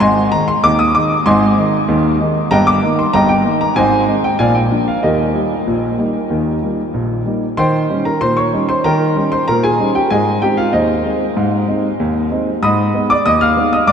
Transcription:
0.00 G#1 G#2 D#5 G#5 C6
0.32 D#3 G#3 D#4 A#5
0.48 C6
0.63 D#2 D#3 D6
0.79 D#6
0.95 D#3 G#3 D#4 D6
1.26 G#1 G#2 D#5 G#5 C6
1.58 D#3 G#3 D#4
1.88 D#2 D#3
2.20 D#3 G#3 D#4
2.51 G1 G2 D#5 G5 A#5
2.67 D6
2.83 D#3 A#3 D#4
2.99 C6
3.13 G1 G2 D#5 G5 A#5
3.29 G5
3.45 D#3 A#3 D#4
3.61 A#5
3.76 G#1 G#2 C5 D#5 G#5
4.08 G#3 C4 D#4
4.24 G5
4.39 A#1 A#2 D5 F5 G#5
4.55 G5
4.71 F3 A#3 D4
4.88 F5
5.03 D#2 D#3 G4 A#4 D#5
5.35 G3 A#3 D#4
5.67 A#1 A#2
5.98 G3 A#3 D#4
6.30 D#2 D#3
6.63 G3 A#3 D#4
6.94 A#1 A#2
7.26 G3 A#3 D#4
7.57 D#3 C5 G5 C6
7.90 G3 C#4 D#4
8.05 A#4 A#5
8.21 A#2 C5 C6
8.37 C#5 C#6
8.53 G3 C#4 D#4
8.69 C5 C6
8.84 D#3 A#4 G5 A#5
9.16 G3 C#4 D#4
9.32 C5 C6
9.48 A#2 A#4 A#5
9.63 G#4 G#5
9.79 G3 C#4 D#4
9.95 G4 G5
10.10 G#2 G#4 D#5 G#5
10.42 G#3 C4 D#4 G4 G5
10.57 F4 F5
10.73 D#2 D#4 C5 D#5
11.04 G#3 C4 D#4
11.37 G#2
11.68 G#3 C4 D#4
12.00 D#2
12.31 G#3 C4 D#4
12.63 G#2 D#5 B5 D#6
12.94 G#3 B3 D#4
13.10 D5 D6
13.26 D#2 D#5 D#6
13.41 F5 F6
13.56 G#3 B3 D#4
13.73 D#5 D#6
13.87 G#2 D5 D6

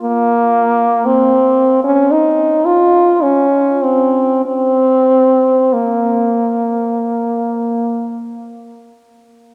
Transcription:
0.03 A#3
1.05 C4
1.84 C#4
2.11 D#4
2.65 F4
3.22 C#4
3.83 C4
4.45 C4
5.73 A#3

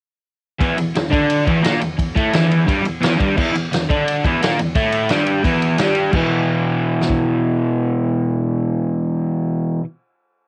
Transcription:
0.59 E2 E3, kick, ride
0.78 E2, ride
0.95 E2, snare, ride
1.10 D3 D4, kick, ride
1.30 ride
1.46 E2 E3, kick, ride
1.63 A#2 A#3, snare, ride
1.81 E2, ride
1.98 E2, kick, ride
2.15 A2 A3, kick, ride
2.33 E2 E3, snare, ride
2.51 ride
2.66 G2 G3, kick, ride
2.84 E2, ride
3.01 E2 E3, snare, ride
3.18 G2 G3, kick, ride
3.36 E2 E3, kick, crash
3.55 E2, ride
3.72 E2, snare, ride
3.89 D3 D4, kick, ride
4.08 ride
4.24 E2 E3, kick, ride
4.41 A#2 A#3, snare, ride
4.58 E2, ride
4.75 A2 A3, kick, ride
4.92 ride
5.09 G2 G3, snare, ride
5.27 ride
5.44 E2 E3, kick, ride
5.62 ride
5.78 G2 G3, snare, ride
5.95 ride
6.12 E2 B2, kick, crash
6.16 E3
7.01 snare
7.09 kick

